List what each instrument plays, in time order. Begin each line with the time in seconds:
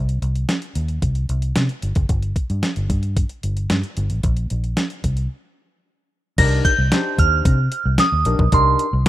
Already playing: fingered electric bass C2
0.09 closed hi-hat
0.22 fingered electric bass C2, closed hi-hat
0.36 closed hi-hat
0.49 snare, closed hi-hat
0.62 closed hi-hat
0.75 fingered electric bass D#2, closed hi-hat
0.88 closed hi-hat
1.02 fingered electric bass C2, kick, closed hi-hat
1.15 closed hi-hat
1.29 fingered electric bass C2, closed hi-hat
1.42 closed hi-hat
1.56 fingered electric bass C3, snare, closed hi-hat
1.69 closed hi-hat
1.82 fingered electric bass G1, closed hi-hat
1.95 fingered electric bass F#1, kick, closed hi-hat
2.09 fingered electric bass G1, kick, closed hi-hat
2.23 closed hi-hat
2.36 kick, closed hi-hat
2.50 fingered electric bass G2, closed hi-hat
2.63 snare, closed hi-hat
2.76 fingered electric bass G1, closed hi-hat
2.90 fingered electric bass G2, kick, closed hi-hat
3.03 closed hi-hat
3.17 kick, closed hi-hat
3.29 closed hi-hat
3.43 fingered electric bass G1, closed hi-hat
3.57 closed hi-hat
3.70 fingered electric bass G2, snare, closed hi-hat
3.83 closed hi-hat
3.97 fingered electric bass G1, closed hi-hat
4.10 fingered electric bass A1, closed hi-hat
4.23 fingered electric bass A#1, kick, closed hi-hat
4.37 closed hi-hat
4.50 fingered electric bass A#1, closed hi-hat
4.64 closed hi-hat
4.77 snare, closed hi-hat
4.90 closed hi-hat
5.04 fingered electric bass C2, kick, closed hi-hat
5.17 closed hi-hat
6.38 fingered electric bass C2, tine electric piano D4 D#4 G4 A#4, synth bell A#6, kick, closed hi-hat, crash
6.65 synth bell G6, kick, closed hi-hat
6.79 fingered electric bass C2
6.92 tine electric piano D4 D#4 G4 C5, snare, closed hi-hat
7.18 fingered electric bass D#2, synth bell F6, kick, closed hi-hat
7.45 fingered electric bass C3, kick, closed hi-hat
7.72 closed hi-hat
7.86 fingered electric bass C2
7.98 synth bell D#6, snare, closed hi-hat
8.12 fingered electric bass D#2
8.25 fingered electric bass A#1, tine electric piano D4 D#4 G4 A#4, closed hi-hat
8.39 fingered electric bass B1, kick
8.52 fingered electric bass C2, tine electric piano D4 D#4 G4 A#4, synth bell C6, kick, closed hi-hat
8.79 closed hi-hat
8.93 fingered electric bass C2